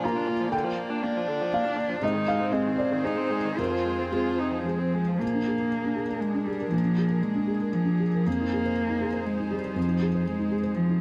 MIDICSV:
0, 0, Header, 1, 5, 480
1, 0, Start_track
1, 0, Tempo, 494234
1, 513, Time_signature, 3, 2, 24, 8
1, 2449, Tempo, 538600
1, 4849, Tempo, 504626
1, 10361, End_track
2, 0, Start_track
2, 0, Title_t, "Felt piano"
2, 0, Program_c, 0, 0
2, 0, Control_c, 0, 64, 127
2, 0, Note_on_c, 0, 46, 61
2, 0, Note_on_c, 0, 62, 45
2, 0, Note_on_c, 0, 77, 82
2, 0, Note_on_c, 0, 80, 76
2, 45, Note_on_c, 0, 82, 73
2, 49, Note_on_c, 0, 65, 45
2, 51, Note_on_c, 0, 70, 50
2, 326, Note_off_c, 0, 62, 0
2, 475, Note_off_c, 0, 46, 0
2, 479, Note_off_c, 0, 82, 0
2, 506, Note_on_c, 0, 79, 89
2, 532, Control_c, 0, 64, 0
2, 537, Note_off_c, 0, 80, 0
2, 538, Note_off_c, 0, 77, 0
2, 659, Control_c, 0, 64, 127
2, 1435, Note_off_c, 0, 79, 0
2, 1494, Note_on_c, 0, 77, 65
2, 1713, Note_off_c, 0, 77, 0
2, 1924, Note_off_c, 0, 65, 0
2, 1925, Note_off_c, 0, 70, 0
2, 1963, Note_on_c, 0, 44, 64
2, 1981, Control_c, 0, 64, 0
2, 1982, Note_on_c, 0, 75, 87
2, 2163, Control_c, 0, 64, 127
2, 2197, Note_off_c, 0, 75, 0
2, 2215, Note_on_c, 0, 77, 83
2, 2438, Note_off_c, 0, 77, 0
2, 2443, Note_on_c, 0, 60, 46
2, 2451, Note_on_c, 0, 75, 80
2, 2663, Note_off_c, 0, 75, 0
2, 2681, Note_on_c, 0, 74, 70
2, 2897, Note_off_c, 0, 74, 0
2, 2910, Note_on_c, 0, 72, 73
2, 2913, Note_on_c, 0, 68, 39
2, 3194, Note_off_c, 0, 60, 0
2, 3356, Note_off_c, 0, 44, 0
2, 3356, Note_off_c, 0, 68, 0
2, 3357, Note_off_c, 0, 72, 0
2, 3394, Note_on_c, 0, 70, 65
2, 3396, Note_on_c, 0, 41, 52
2, 3411, Control_c, 0, 64, 0
2, 3540, Control_c, 0, 64, 127
2, 3843, Note_off_c, 0, 70, 0
2, 3874, Note_on_c, 0, 68, 51
2, 3883, Note_on_c, 0, 60, 40
2, 4341, Note_off_c, 0, 68, 0
2, 4354, Note_on_c, 0, 68, 37
2, 4354, Note_on_c, 0, 72, 39
2, 4657, Note_off_c, 0, 60, 0
2, 4815, Note_off_c, 0, 41, 0
2, 4815, Note_off_c, 0, 68, 0
2, 4815, Note_off_c, 0, 72, 0
2, 4851, Note_on_c, 0, 46, 46
2, 4870, Control_c, 0, 64, 0
2, 4970, Note_on_c, 0, 62, 35
2, 5015, Control_c, 0, 64, 127
2, 5095, Note_on_c, 0, 68, 37
2, 5164, Note_off_c, 0, 62, 0
2, 5218, Note_on_c, 0, 70, 38
2, 5286, Note_off_c, 0, 68, 0
2, 5450, Note_on_c, 0, 62, 33
2, 5555, Note_on_c, 0, 68, 37
2, 5599, Note_off_c, 0, 70, 0
2, 5643, Note_off_c, 0, 62, 0
2, 5684, Note_on_c, 0, 70, 38
2, 5755, Note_off_c, 0, 68, 0
2, 5925, Note_on_c, 0, 62, 36
2, 6041, Note_on_c, 0, 68, 36
2, 6069, Note_off_c, 0, 70, 0
2, 6118, Note_off_c, 0, 62, 0
2, 6170, Note_on_c, 0, 70, 38
2, 6236, Note_off_c, 0, 68, 0
2, 6252, Note_off_c, 0, 46, 0
2, 6280, Note_on_c, 0, 46, 48
2, 6306, Control_c, 0, 64, 0
2, 6362, Note_off_c, 0, 70, 0
2, 6397, Note_on_c, 0, 62, 34
2, 6477, Control_c, 0, 64, 127
2, 6529, Note_on_c, 0, 68, 37
2, 6596, Note_off_c, 0, 62, 0
2, 6640, Note_on_c, 0, 70, 37
2, 6722, Note_off_c, 0, 68, 0
2, 6881, Note_on_c, 0, 62, 34
2, 6996, Note_on_c, 0, 68, 37
2, 7029, Note_off_c, 0, 70, 0
2, 7077, Note_off_c, 0, 62, 0
2, 7126, Note_on_c, 0, 70, 38
2, 7195, Note_off_c, 0, 68, 0
2, 7355, Note_on_c, 0, 62, 35
2, 7497, Note_on_c, 0, 68, 39
2, 7523, Note_off_c, 0, 70, 0
2, 7567, Note_off_c, 0, 62, 0
2, 7631, Note_on_c, 0, 70, 36
2, 7700, Note_off_c, 0, 68, 0
2, 7708, Note_off_c, 0, 46, 0
2, 7753, Note_off_c, 0, 70, 0
2, 7758, Note_on_c, 0, 41, 49
2, 7768, Control_c, 0, 64, 0
2, 7887, Note_on_c, 0, 63, 34
2, 7918, Control_c, 0, 64, 127
2, 8003, Note_on_c, 0, 68, 39
2, 8071, Note_off_c, 0, 63, 0
2, 8123, Note_on_c, 0, 72, 38
2, 8188, Note_off_c, 0, 68, 0
2, 8347, Note_on_c, 0, 63, 37
2, 8460, Note_on_c, 0, 68, 39
2, 8496, Note_off_c, 0, 72, 0
2, 8537, Note_off_c, 0, 63, 0
2, 8576, Note_on_c, 0, 72, 40
2, 8653, Note_off_c, 0, 68, 0
2, 8825, Note_on_c, 0, 63, 36
2, 8932, Note_on_c, 0, 68, 41
2, 8960, Note_off_c, 0, 72, 0
2, 9013, Note_off_c, 0, 63, 0
2, 9060, Note_on_c, 0, 72, 42
2, 9126, Note_off_c, 0, 68, 0
2, 9143, Note_off_c, 0, 41, 0
2, 9170, Note_on_c, 0, 41, 50
2, 9196, Control_c, 0, 64, 0
2, 9249, Note_off_c, 0, 72, 0
2, 9288, Note_on_c, 0, 63, 39
2, 9354, Control_c, 0, 64, 127
2, 9418, Note_on_c, 0, 68, 41
2, 9481, Note_off_c, 0, 63, 0
2, 9541, Note_on_c, 0, 72, 42
2, 9605, Note_off_c, 0, 68, 0
2, 9770, Note_on_c, 0, 63, 41
2, 9889, Note_on_c, 0, 68, 40
2, 9913, Note_off_c, 0, 72, 0
2, 9957, Note_off_c, 0, 63, 0
2, 10004, Note_on_c, 0, 72, 43
2, 10077, Note_off_c, 0, 68, 0
2, 10248, Note_on_c, 0, 63, 41
2, 10361, Note_off_c, 0, 41, 0
2, 10361, Note_off_c, 0, 63, 0
2, 10361, Note_off_c, 0, 72, 0
2, 10361, End_track
3, 0, Start_track
3, 0, Title_t, "String section"
3, 0, Program_c, 1, 48
3, 0, Note_on_c, 1, 58, 46
3, 0, Note_on_c, 1, 65, 57
3, 0, Note_on_c, 1, 74, 48
3, 1953, Note_off_c, 1, 65, 0
3, 1961, Note_off_c, 1, 74, 0
3, 1962, Note_off_c, 1, 58, 0
3, 1975, Note_on_c, 1, 72, 60
3, 1984, Note_on_c, 1, 60, 61
3, 1984, Note_on_c, 1, 68, 60
3, 4847, Note_off_c, 1, 68, 0
3, 4855, Note_off_c, 1, 72, 0
3, 4858, Note_on_c, 1, 62, 42
3, 4859, Note_off_c, 1, 60, 0
3, 4859, Note_on_c, 1, 68, 45
3, 4866, Note_on_c, 1, 70, 45
3, 7717, Note_off_c, 1, 62, 0
3, 7721, Note_off_c, 1, 70, 0
3, 7722, Note_on_c, 1, 63, 47
3, 7733, Note_on_c, 1, 72, 45
3, 10361, Note_off_c, 1, 63, 0
3, 10361, Note_off_c, 1, 68, 0
3, 10361, Note_off_c, 1, 72, 0
3, 10361, End_track
4, 0, Start_track
4, 0, Title_t, "Cello"
4, 0, Program_c, 2, 42
4, 36, Note_on_c, 2, 65, 68
4, 503, Note_off_c, 2, 65, 0
4, 509, Note_on_c, 2, 58, 67
4, 1002, Note_on_c, 2, 62, 74
4, 1017, Note_off_c, 2, 58, 0
4, 1967, Note_on_c, 2, 63, 67
4, 1981, Note_off_c, 2, 62, 0
4, 2447, Note_on_c, 2, 60, 64
4, 2460, Note_off_c, 2, 63, 0
4, 2909, Note_on_c, 2, 63, 59
4, 2922, Note_off_c, 2, 60, 0
4, 3391, Note_on_c, 2, 65, 59
4, 3404, Note_off_c, 2, 63, 0
4, 3827, Note_off_c, 2, 65, 0
4, 3867, Note_on_c, 2, 65, 59
4, 4115, Note_on_c, 2, 63, 54
4, 4128, Note_off_c, 2, 65, 0
4, 4339, Note_off_c, 2, 63, 0
4, 4344, Note_on_c, 2, 53, 59
4, 4836, Note_on_c, 2, 58, 71
4, 4849, Note_off_c, 2, 53, 0
4, 5793, Note_on_c, 2, 56, 61
4, 5807, Note_off_c, 2, 58, 0
4, 6035, Note_on_c, 2, 55, 61
4, 6050, Note_off_c, 2, 56, 0
4, 6267, Note_off_c, 2, 55, 0
4, 6272, Note_on_c, 2, 53, 64
4, 6751, Note_on_c, 2, 56, 64
4, 6766, Note_off_c, 2, 53, 0
4, 7241, Note_on_c, 2, 53, 62
4, 7255, Note_off_c, 2, 56, 0
4, 7749, Note_on_c, 2, 58, 78
4, 7763, Note_off_c, 2, 53, 0
4, 8699, Note_on_c, 2, 56, 63
4, 8713, Note_off_c, 2, 58, 0
4, 8942, Note_on_c, 2, 55, 62
4, 8956, Note_off_c, 2, 56, 0
4, 9181, Note_on_c, 2, 53, 70
4, 9195, Note_off_c, 2, 55, 0
4, 9645, Note_on_c, 2, 56, 73
4, 9659, Note_off_c, 2, 53, 0
4, 10119, Note_on_c, 2, 53, 66
4, 10133, Note_off_c, 2, 56, 0
4, 10361, Note_off_c, 2, 53, 0
4, 10361, End_track
5, 0, Start_track
5, 0, Title_t, "Viola"
5, 0, Program_c, 3, 41
5, 33, Note_on_c, 3, 58, 56
5, 155, Note_on_c, 3, 62, 54
5, 170, Note_off_c, 3, 58, 0
5, 264, Note_on_c, 3, 58, 54
5, 279, Note_off_c, 3, 62, 0
5, 394, Note_on_c, 3, 53, 57
5, 409, Note_off_c, 3, 58, 0
5, 498, Note_off_c, 3, 53, 0
5, 504, Note_on_c, 3, 50, 59
5, 622, Note_on_c, 3, 53, 52
5, 636, Note_off_c, 3, 50, 0
5, 745, Note_on_c, 3, 58, 57
5, 760, Note_off_c, 3, 53, 0
5, 870, Note_on_c, 3, 62, 55
5, 884, Note_off_c, 3, 58, 0
5, 997, Note_on_c, 3, 58, 60
5, 1012, Note_off_c, 3, 62, 0
5, 1132, Note_on_c, 3, 53, 54
5, 1146, Note_off_c, 3, 58, 0
5, 1247, Note_on_c, 3, 50, 59
5, 1261, Note_off_c, 3, 53, 0
5, 1370, Note_on_c, 3, 53, 54
5, 1385, Note_off_c, 3, 50, 0
5, 1488, Note_on_c, 3, 58, 58
5, 1502, Note_off_c, 3, 53, 0
5, 1603, Note_on_c, 3, 62, 52
5, 1618, Note_off_c, 3, 58, 0
5, 1711, Note_on_c, 3, 58, 58
5, 1725, Note_off_c, 3, 62, 0
5, 1832, Note_on_c, 3, 53, 58
5, 1847, Note_off_c, 3, 58, 0
5, 1947, Note_off_c, 3, 53, 0
5, 1953, Note_on_c, 3, 48, 59
5, 2081, Note_on_c, 3, 51, 54
5, 2095, Note_off_c, 3, 48, 0
5, 2211, Note_on_c, 3, 56, 54
5, 2225, Note_off_c, 3, 51, 0
5, 2337, Note_on_c, 3, 60, 53
5, 2352, Note_off_c, 3, 56, 0
5, 2452, Note_on_c, 3, 56, 55
5, 2466, Note_off_c, 3, 60, 0
5, 2570, Note_on_c, 3, 51, 50
5, 2583, Note_off_c, 3, 56, 0
5, 2687, Note_on_c, 3, 48, 50
5, 2701, Note_off_c, 3, 51, 0
5, 2803, Note_on_c, 3, 51, 47
5, 2817, Note_off_c, 3, 48, 0
5, 2918, Note_on_c, 3, 56, 52
5, 2932, Note_off_c, 3, 51, 0
5, 3030, Note_on_c, 3, 60, 46
5, 3044, Note_off_c, 3, 56, 0
5, 3149, Note_on_c, 3, 56, 46
5, 3162, Note_off_c, 3, 60, 0
5, 3272, Note_on_c, 3, 51, 47
5, 3286, Note_off_c, 3, 56, 0
5, 3385, Note_off_c, 3, 51, 0
5, 3390, Note_on_c, 3, 48, 51
5, 3506, Note_on_c, 3, 53, 45
5, 3519, Note_off_c, 3, 48, 0
5, 3633, Note_on_c, 3, 56, 49
5, 3646, Note_off_c, 3, 53, 0
5, 3754, Note_on_c, 3, 60, 44
5, 3768, Note_off_c, 3, 56, 0
5, 3874, Note_on_c, 3, 56, 45
5, 3888, Note_off_c, 3, 60, 0
5, 4000, Note_on_c, 3, 53, 43
5, 4013, Note_off_c, 3, 56, 0
5, 4114, Note_on_c, 3, 48, 46
5, 4127, Note_off_c, 3, 53, 0
5, 4230, Note_on_c, 3, 53, 44
5, 4243, Note_off_c, 3, 48, 0
5, 4353, Note_on_c, 3, 56, 44
5, 4367, Note_off_c, 3, 53, 0
5, 4469, Note_on_c, 3, 60, 42
5, 4483, Note_off_c, 3, 56, 0
5, 4607, Note_on_c, 3, 56, 44
5, 4621, Note_off_c, 3, 60, 0
5, 4730, Note_on_c, 3, 53, 45
5, 4744, Note_off_c, 3, 56, 0
5, 4850, Note_off_c, 3, 53, 0
5, 10361, End_track
0, 0, End_of_file